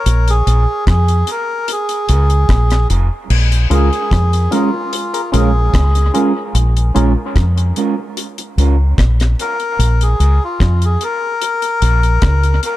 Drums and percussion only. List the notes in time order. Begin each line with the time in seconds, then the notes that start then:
0.06 closed hi-hat
0.28 closed hi-hat
0.47 closed hi-hat
0.87 kick, cross-stick, closed hi-hat
1.08 closed hi-hat
1.27 closed hi-hat
1.68 closed hi-hat
1.89 closed hi-hat
2.09 closed hi-hat
2.30 closed hi-hat
2.49 kick, cross-stick, closed hi-hat
2.70 cross-stick, closed hi-hat
2.90 closed hi-hat
3.30 crash
3.52 closed hi-hat
3.71 closed hi-hat
3.93 closed hi-hat
4.11 kick, cross-stick, closed hi-hat
4.33 closed hi-hat
4.52 closed hi-hat
4.93 closed hi-hat
5.14 closed hi-hat
5.34 closed hi-hat
5.74 kick, cross-stick, closed hi-hat
5.95 closed hi-hat
6.15 closed hi-hat
6.55 closed hi-hat
6.77 closed hi-hat
6.96 closed hi-hat
7.36 kick, cross-stick, closed hi-hat
7.58 closed hi-hat
7.76 closed hi-hat
8.17 closed hi-hat
8.38 closed hi-hat
8.58 closed hi-hat
8.98 kick, cross-stick, closed hi-hat
9.20 cross-stick, closed hi-hat
9.39 closed hi-hat
9.60 closed hi-hat
9.80 closed hi-hat
10.01 closed hi-hat
10.20 closed hi-hat
10.60 kick, cross-stick, closed hi-hat
10.82 closed hi-hat
11.01 closed hi-hat
11.42 closed hi-hat
11.62 closed hi-hat
11.82 closed hi-hat
12.03 closed hi-hat
12.22 kick, cross-stick, closed hi-hat
12.43 closed hi-hat
12.63 closed hi-hat